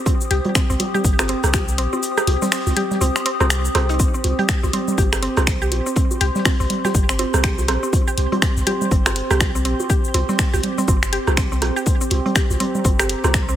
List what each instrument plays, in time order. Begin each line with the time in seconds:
Already playing: ambient pad C4 G4 C5 D#6
0.06 synth arpeggio sound C4, kick, closed hi-hat, low bongo, shaker
0.21 shaker
0.30 sub bass C2, synth arpeggio sound G4, snare, closed hi-hat
0.45 closed hi-hat, low bongo, low conga
0.55 synth arpeggio sound C4, finger snap, kick, snare, closed hi-hat, shaker
0.69 sub bass C2, synth arpeggio sound C4, snare, shaker
0.80 closed hi-hat, low bongo, low conga
0.94 synth arpeggio sound G4, low conga, shaker
1.04 sub bass G1, kick, closed hi-hat, shaker
1.19 synth arpeggio sound C4, finger snap, cross-stick, closed hi-hat, low bongo, shaker
1.28 synth arpeggio sound C4, closed hi-hat
1.43 sub bass C2, cross-stick, closed hi-hat, shaker
1.54 synth arpeggio sound G4, finger snap, kick, snare, closed hi-hat, low bongo, shaker
1.68 shaker
1.78 sub bass A#1, synth arpeggio sound C4, closed hi-hat
1.93 synth arpeggio sound C4, low bongo, shaker
2.03 closed hi-hat, shaker
2.17 synth arpeggio sound G4, cross-stick, shaker
2.27 sub bass C2, snare, closed hi-hat, low bongo
2.42 synth arpeggio sound C4, snare, low conga, shaker
2.52 synth arpeggio sound C4, finger snap, snare, open hi-hat, shaker
2.67 sub bass C2, snare, low bongo, shaker
2.76 synth arpeggio sound G4, closed hi-hat, low conga
2.91 snare, low conga, shaker
3.01 sub bass C2, synth arpeggio sound C4, closed hi-hat, low bongo, shaker
3.16 synth arpeggio sound C4, finger snap, closed hi-hat, shaker
3.26 synth arpeggio sound C4, closed hi-hat
3.40 sub bass C2, synth arpeggio sound C4, cross-stick, low bongo, shaker
3.50 finger snap, closed hi-hat, shaker
3.65 shaker
3.75 sub bass C2, synth arpeggio sound C4, cross-stick, snare, closed hi-hat, low bongo
3.89 synth arpeggio sound D#4, closed hi-hat, shaker
3.99 synth arpeggio sound C4, kick, closed hi-hat, shaker
4.14 synth arpeggio sound C4, shaker
4.24 sub bass C2, snare, closed hi-hat, low bongo
4.39 synth arpeggio sound G4, closed hi-hat, low conga
4.48 finger snap, kick, snare, closed hi-hat, shaker
4.58 ambient pad C6
4.63 sub bass C2, synth arpeggio sound C4, snare, low bongo, shaker
4.73 synth arpeggio sound C4, closed hi-hat, low conga
4.88 low conga, shaker
4.98 sub bass G1, synth arpeggio sound G4, kick, closed hi-hat, low bongo, shaker
5.12 finger snap, cross-stick, closed hi-hat, shaker
5.23 synth arpeggio sound C4, closed hi-hat
5.37 sub bass C2, synth arpeggio sound C4, cross-stick, closed hi-hat, low bongo, shaker
5.47 finger snap, kick, snare, closed hi-hat, shaker
5.62 synth arpeggio sound G4, shaker
5.72 sub bass A#1, closed hi-hat, low bongo
5.86 synth arpeggio sound C4, shaker
5.96 synth arpeggio sound C4, kick, closed hi-hat, shaker
6.11 low bongo, shaker
6.21 sub bass C2, synth arpeggio sound G4, snare, closed hi-hat
6.35 snare, low conga, shaker
6.45 synth arpeggio sound C4, finger snap, kick, snare, open hi-hat, low bongo, shaker
6.60 sub bass C2, synth arpeggio sound C4, snare, shaker
6.70 closed hi-hat, low conga
6.85 synth arpeggio sound G4, snare, low bongo, low conga, shaker
6.95 sub bass G1, kick, closed hi-hat, shaker
7.09 synth arpeggio sound C4, finger snap, closed hi-hat, shaker
7.19 synth arpeggio sound C4, closed hi-hat, low bongo
7.34 sub bass C2, cross-stick, shaker
7.43 synth arpeggio sound G4, finger snap, kick, snare, closed hi-hat, shaker
7.58 snare, low bongo, shaker
7.68 sub bass A#1, synth arpeggio sound C4, cross-stick, snare, closed hi-hat
7.83 synth arpeggio sound C4, shaker
7.93 kick, closed hi-hat, low bongo, shaker
8.08 synth arpeggio sound G4, shaker
8.17 sub bass C2, snare, closed hi-hat
8.32 synth arpeggio sound C4, closed hi-hat, low bongo, low conga
8.42 synth arpeggio sound C4, finger snap, kick, snare, closed hi-hat, shaker
8.57 sub bass C2, snare, shaker
8.67 synth arpeggio sound G4, closed hi-hat, low bongo, low conga
8.81 low conga, shaker
8.91 sub bass G1, synth arpeggio sound C4, kick, closed hi-hat, shaker
9.06 synth arpeggio sound C4, finger snap, cross-stick, closed hi-hat, low bongo, shaker
9.16 closed hi-hat
9.30 sub bass C2, synth arpeggio sound G4, cross-stick, closed hi-hat, shaker
9.40 finger snap, kick, snare, closed hi-hat, low bongo, shaker
9.55 synth arpeggio sound C4, shaker
9.65 sub bass A#1, synth arpeggio sound C4, closed hi-hat
9.80 low bongo, shaker
9.90 synth arpeggio sound G4, kick, closed hi-hat, shaker
10.04 shaker
10.14 sub bass C2, synth arpeggio sound C4, snare, closed hi-hat, low bongo
10.29 synth arpeggio sound C4, snare, low conga, shaker
10.39 finger snap, kick, snare, open hi-hat, shaker
10.54 sub bass C2, synth arpeggio sound G4, snare, low bongo, shaker
10.63 closed hi-hat, low conga
10.77 synth arpeggio sound C4, snare, low conga, shaker
10.88 sub bass G1, synth arpeggio sound C4, kick, closed hi-hat, low bongo, shaker
11.03 finger snap, closed hi-hat, shaker
11.13 synth arpeggio sound G4, closed hi-hat
11.27 sub bass C2, cross-stick, low bongo, shaker
11.37 synth arpeggio sound C4, finger snap, kick, snare, closed hi-hat, shaker
11.52 synth arpeggio sound C4, snare, shaker
11.61 sub bass A#1, cross-stick, snare, closed hi-hat, low bongo
11.76 synth arpeggio sound G4, shaker
11.86 kick, closed hi-hat, shaker
12.01 synth arpeggio sound C4, shaker
12.10 sub bass C2, snare, closed hi-hat, low bongo
12.26 synth arpeggio sound C4, closed hi-hat, low conga
12.35 synth arpeggio sound G4, finger snap, kick, snare, closed hi-hat, shaker
12.45 ambient pad A#5
12.50 sub bass C2, snare, low bongo, shaker
12.60 synth arpeggio sound C4, closed hi-hat, low conga
12.75 low conga, shaker
12.84 sub bass G1, synth arpeggio sound C4, kick, closed hi-hat, low bongo, shaker
12.99 synth arpeggio sound G4, finger snap, cross-stick, closed hi-hat, shaker
13.09 closed hi-hat
13.24 sub bass C2, synth arpeggio sound C4, cross-stick, closed hi-hat, low bongo, shaker
13.34 finger snap, kick, snare, closed hi-hat, shaker
13.49 synth arpeggio sound C4, shaker